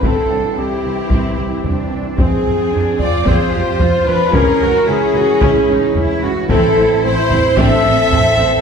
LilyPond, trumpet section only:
\new Staff \with { instrumentName = "Trumpet section" } { \time 4/4 \key a \minor \tempo 4 = 111 a'4 g'2~ g'8 r8 | aes'4. d''8 c''4. b'8 | bes'4 gis'2~ gis'8 r8 | a'4 c''4 e''2 | }